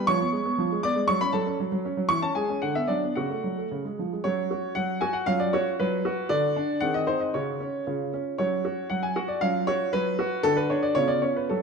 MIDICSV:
0, 0, Header, 1, 2, 480
1, 0, Start_track
1, 0, Key_signature, 3, "minor"
1, 0, Tempo, 506329
1, 72, Time_signature, 2, 2, 24, 8
1, 1992, Tempo, 536673
1, 3912, Tempo, 515464
1, 9672, Tempo, 536673
1, 10734, End_track
2, 0, Start_track
2, 0, Title_t, "Grand piano"
2, 0, Program_c, 0, 0
2, 68, Note_on_c, 0, 85, 121
2, 75, Note_on_c, 0, 73, 83
2, 77, Note_on_c, 0, 53, 74
2, 191, Note_off_c, 0, 53, 0
2, 201, Note_on_c, 0, 59, 66
2, 306, Note_on_c, 0, 56, 58
2, 322, Note_off_c, 0, 59, 0
2, 430, Note_on_c, 0, 59, 59
2, 434, Note_off_c, 0, 56, 0
2, 553, Note_on_c, 0, 53, 71
2, 557, Note_off_c, 0, 59, 0
2, 669, Note_off_c, 0, 53, 0
2, 682, Note_on_c, 0, 56, 66
2, 751, Note_off_c, 0, 85, 0
2, 755, Note_off_c, 0, 73, 0
2, 790, Note_on_c, 0, 86, 109
2, 799, Note_on_c, 0, 59, 69
2, 801, Note_on_c, 0, 74, 90
2, 803, Note_off_c, 0, 56, 0
2, 906, Note_on_c, 0, 56, 65
2, 921, Note_off_c, 0, 59, 0
2, 934, Note_off_c, 0, 86, 0
2, 1020, Note_off_c, 0, 74, 0
2, 1020, Note_on_c, 0, 85, 116
2, 1029, Note_off_c, 0, 56, 0
2, 1030, Note_on_c, 0, 54, 83
2, 1146, Note_off_c, 0, 85, 0
2, 1146, Note_on_c, 0, 83, 105
2, 1147, Note_off_c, 0, 54, 0
2, 1148, Note_on_c, 0, 61, 69
2, 1257, Note_on_c, 0, 81, 92
2, 1265, Note_on_c, 0, 54, 64
2, 1269, Note_off_c, 0, 83, 0
2, 1269, Note_on_c, 0, 69, 78
2, 1276, Note_off_c, 0, 61, 0
2, 1387, Note_on_c, 0, 61, 60
2, 1394, Note_off_c, 0, 54, 0
2, 1405, Note_off_c, 0, 81, 0
2, 1493, Note_off_c, 0, 69, 0
2, 1515, Note_off_c, 0, 61, 0
2, 1515, Note_on_c, 0, 54, 64
2, 1616, Note_off_c, 0, 54, 0
2, 1630, Note_on_c, 0, 54, 68
2, 1754, Note_on_c, 0, 61, 65
2, 1756, Note_off_c, 0, 54, 0
2, 1869, Note_on_c, 0, 54, 62
2, 1879, Note_off_c, 0, 61, 0
2, 1977, Note_on_c, 0, 85, 118
2, 1986, Note_on_c, 0, 52, 81
2, 1991, Note_off_c, 0, 54, 0
2, 2099, Note_on_c, 0, 61, 64
2, 2100, Note_off_c, 0, 85, 0
2, 2101, Note_off_c, 0, 52, 0
2, 2102, Note_on_c, 0, 81, 100
2, 2214, Note_on_c, 0, 80, 80
2, 2220, Note_off_c, 0, 81, 0
2, 2224, Note_on_c, 0, 56, 61
2, 2225, Note_off_c, 0, 61, 0
2, 2227, Note_on_c, 0, 68, 63
2, 2341, Note_on_c, 0, 61, 55
2, 2346, Note_off_c, 0, 56, 0
2, 2444, Note_off_c, 0, 68, 0
2, 2453, Note_on_c, 0, 78, 86
2, 2454, Note_off_c, 0, 80, 0
2, 2458, Note_off_c, 0, 61, 0
2, 2464, Note_on_c, 0, 50, 70
2, 2575, Note_off_c, 0, 78, 0
2, 2575, Note_on_c, 0, 76, 89
2, 2577, Note_off_c, 0, 50, 0
2, 2577, Note_on_c, 0, 59, 61
2, 2684, Note_on_c, 0, 74, 86
2, 2691, Note_on_c, 0, 54, 56
2, 2695, Note_on_c, 0, 62, 67
2, 2696, Note_off_c, 0, 76, 0
2, 2703, Note_off_c, 0, 59, 0
2, 2822, Note_off_c, 0, 54, 0
2, 2826, Note_on_c, 0, 59, 53
2, 2909, Note_off_c, 0, 74, 0
2, 2922, Note_off_c, 0, 62, 0
2, 2934, Note_on_c, 0, 78, 75
2, 2944, Note_off_c, 0, 59, 0
2, 2947, Note_on_c, 0, 66, 58
2, 2948, Note_on_c, 0, 49, 64
2, 3063, Note_on_c, 0, 57, 53
2, 3064, Note_off_c, 0, 49, 0
2, 3188, Note_on_c, 0, 54, 48
2, 3192, Note_off_c, 0, 57, 0
2, 3313, Note_on_c, 0, 57, 43
2, 3316, Note_off_c, 0, 54, 0
2, 3401, Note_off_c, 0, 66, 0
2, 3428, Note_off_c, 0, 78, 0
2, 3434, Note_off_c, 0, 57, 0
2, 3434, Note_on_c, 0, 49, 58
2, 3552, Note_off_c, 0, 49, 0
2, 3556, Note_on_c, 0, 56, 47
2, 3682, Note_on_c, 0, 53, 49
2, 3683, Note_off_c, 0, 56, 0
2, 3804, Note_on_c, 0, 56, 45
2, 3805, Note_off_c, 0, 53, 0
2, 3904, Note_on_c, 0, 73, 93
2, 3912, Note_on_c, 0, 61, 48
2, 3913, Note_on_c, 0, 66, 48
2, 3914, Note_on_c, 0, 54, 66
2, 3917, Note_off_c, 0, 56, 0
2, 4140, Note_off_c, 0, 66, 0
2, 4146, Note_off_c, 0, 54, 0
2, 4154, Note_on_c, 0, 66, 56
2, 4349, Note_off_c, 0, 73, 0
2, 4380, Note_on_c, 0, 78, 94
2, 4385, Note_off_c, 0, 66, 0
2, 4393, Note_on_c, 0, 54, 65
2, 4619, Note_on_c, 0, 80, 91
2, 4624, Note_off_c, 0, 54, 0
2, 4624, Note_off_c, 0, 78, 0
2, 4628, Note_on_c, 0, 66, 74
2, 4733, Note_on_c, 0, 78, 85
2, 4744, Note_off_c, 0, 80, 0
2, 4832, Note_off_c, 0, 61, 0
2, 4857, Note_on_c, 0, 77, 114
2, 4862, Note_off_c, 0, 66, 0
2, 4862, Note_off_c, 0, 78, 0
2, 4865, Note_on_c, 0, 61, 54
2, 4866, Note_on_c, 0, 65, 57
2, 4867, Note_on_c, 0, 54, 79
2, 4979, Note_on_c, 0, 74, 86
2, 4983, Note_off_c, 0, 77, 0
2, 5100, Note_off_c, 0, 54, 0
2, 5103, Note_off_c, 0, 74, 0
2, 5107, Note_on_c, 0, 73, 98
2, 5114, Note_on_c, 0, 66, 78
2, 5249, Note_off_c, 0, 73, 0
2, 5340, Note_off_c, 0, 66, 0
2, 5353, Note_on_c, 0, 71, 97
2, 5358, Note_on_c, 0, 54, 79
2, 5579, Note_off_c, 0, 54, 0
2, 5591, Note_on_c, 0, 66, 75
2, 5775, Note_off_c, 0, 61, 0
2, 5776, Note_off_c, 0, 65, 0
2, 5807, Note_off_c, 0, 66, 0
2, 5816, Note_on_c, 0, 74, 111
2, 5819, Note_off_c, 0, 71, 0
2, 5821, Note_on_c, 0, 50, 92
2, 5821, Note_on_c, 0, 62, 66
2, 5821, Note_on_c, 0, 66, 55
2, 6051, Note_off_c, 0, 50, 0
2, 6054, Note_off_c, 0, 62, 0
2, 6068, Note_on_c, 0, 62, 78
2, 6267, Note_off_c, 0, 66, 0
2, 6293, Note_on_c, 0, 78, 102
2, 6297, Note_off_c, 0, 62, 0
2, 6299, Note_off_c, 0, 74, 0
2, 6303, Note_on_c, 0, 51, 78
2, 6303, Note_on_c, 0, 60, 53
2, 6306, Note_on_c, 0, 68, 53
2, 6417, Note_off_c, 0, 78, 0
2, 6421, Note_on_c, 0, 75, 92
2, 6537, Note_off_c, 0, 51, 0
2, 6540, Note_on_c, 0, 72, 93
2, 6542, Note_off_c, 0, 75, 0
2, 6546, Note_on_c, 0, 63, 69
2, 6663, Note_on_c, 0, 75, 69
2, 6664, Note_off_c, 0, 72, 0
2, 6756, Note_off_c, 0, 60, 0
2, 6758, Note_off_c, 0, 68, 0
2, 6783, Note_off_c, 0, 63, 0
2, 6787, Note_off_c, 0, 75, 0
2, 6791, Note_on_c, 0, 73, 81
2, 6799, Note_on_c, 0, 49, 66
2, 6799, Note_on_c, 0, 61, 44
2, 6800, Note_on_c, 0, 66, 47
2, 7023, Note_off_c, 0, 61, 0
2, 7033, Note_off_c, 0, 49, 0
2, 7037, Note_on_c, 0, 61, 59
2, 7252, Note_off_c, 0, 66, 0
2, 7270, Note_off_c, 0, 61, 0
2, 7282, Note_off_c, 0, 73, 0
2, 7283, Note_on_c, 0, 65, 46
2, 7284, Note_on_c, 0, 61, 44
2, 7285, Note_on_c, 0, 49, 65
2, 7519, Note_off_c, 0, 61, 0
2, 7521, Note_off_c, 0, 49, 0
2, 7533, Note_on_c, 0, 61, 59
2, 7737, Note_off_c, 0, 65, 0
2, 7757, Note_off_c, 0, 61, 0
2, 7764, Note_on_c, 0, 73, 90
2, 7771, Note_on_c, 0, 54, 61
2, 7771, Note_on_c, 0, 61, 51
2, 7772, Note_on_c, 0, 66, 49
2, 7995, Note_off_c, 0, 66, 0
2, 8002, Note_off_c, 0, 54, 0
2, 8009, Note_on_c, 0, 66, 63
2, 8206, Note_off_c, 0, 73, 0
2, 8240, Note_off_c, 0, 66, 0
2, 8240, Note_on_c, 0, 78, 91
2, 8251, Note_on_c, 0, 54, 59
2, 8362, Note_off_c, 0, 78, 0
2, 8362, Note_on_c, 0, 80, 78
2, 8480, Note_off_c, 0, 54, 0
2, 8483, Note_off_c, 0, 80, 0
2, 8485, Note_on_c, 0, 78, 81
2, 8487, Note_on_c, 0, 66, 72
2, 8598, Note_on_c, 0, 74, 78
2, 8603, Note_off_c, 0, 78, 0
2, 8685, Note_off_c, 0, 61, 0
2, 8715, Note_off_c, 0, 66, 0
2, 8719, Note_off_c, 0, 74, 0
2, 8719, Note_on_c, 0, 77, 109
2, 8729, Note_on_c, 0, 54, 77
2, 8729, Note_on_c, 0, 61, 60
2, 8729, Note_on_c, 0, 65, 52
2, 8954, Note_off_c, 0, 54, 0
2, 8956, Note_off_c, 0, 77, 0
2, 8962, Note_on_c, 0, 73, 108
2, 8972, Note_on_c, 0, 66, 70
2, 9193, Note_off_c, 0, 66, 0
2, 9195, Note_off_c, 0, 73, 0
2, 9201, Note_on_c, 0, 71, 109
2, 9210, Note_on_c, 0, 54, 70
2, 9432, Note_off_c, 0, 54, 0
2, 9443, Note_on_c, 0, 66, 83
2, 9637, Note_off_c, 0, 61, 0
2, 9637, Note_off_c, 0, 65, 0
2, 9667, Note_off_c, 0, 66, 0
2, 9672, Note_on_c, 0, 69, 127
2, 9675, Note_off_c, 0, 71, 0
2, 9677, Note_on_c, 0, 50, 89
2, 9678, Note_on_c, 0, 62, 64
2, 9681, Note_on_c, 0, 66, 59
2, 9788, Note_off_c, 0, 69, 0
2, 9790, Note_on_c, 0, 71, 97
2, 9901, Note_off_c, 0, 50, 0
2, 9902, Note_off_c, 0, 62, 0
2, 9906, Note_off_c, 0, 71, 0
2, 9909, Note_on_c, 0, 73, 87
2, 9915, Note_on_c, 0, 62, 80
2, 10022, Note_on_c, 0, 74, 89
2, 10024, Note_off_c, 0, 73, 0
2, 10114, Note_off_c, 0, 66, 0
2, 10132, Note_on_c, 0, 73, 106
2, 10140, Note_off_c, 0, 62, 0
2, 10140, Note_on_c, 0, 65, 59
2, 10141, Note_off_c, 0, 74, 0
2, 10141, Note_on_c, 0, 49, 78
2, 10142, Note_on_c, 0, 59, 56
2, 10247, Note_on_c, 0, 74, 93
2, 10257, Note_off_c, 0, 73, 0
2, 10374, Note_on_c, 0, 73, 77
2, 10375, Note_off_c, 0, 49, 0
2, 10375, Note_off_c, 0, 74, 0
2, 10378, Note_on_c, 0, 61, 69
2, 10500, Note_off_c, 0, 73, 0
2, 10503, Note_on_c, 0, 71, 70
2, 10593, Note_off_c, 0, 65, 0
2, 10594, Note_off_c, 0, 59, 0
2, 10616, Note_off_c, 0, 61, 0
2, 10620, Note_on_c, 0, 69, 76
2, 10627, Note_off_c, 0, 71, 0
2, 10630, Note_on_c, 0, 61, 41
2, 10631, Note_on_c, 0, 54, 64
2, 10633, Note_on_c, 0, 66, 43
2, 10734, Note_off_c, 0, 54, 0
2, 10734, Note_off_c, 0, 61, 0
2, 10734, Note_off_c, 0, 66, 0
2, 10734, Note_off_c, 0, 69, 0
2, 10734, End_track
0, 0, End_of_file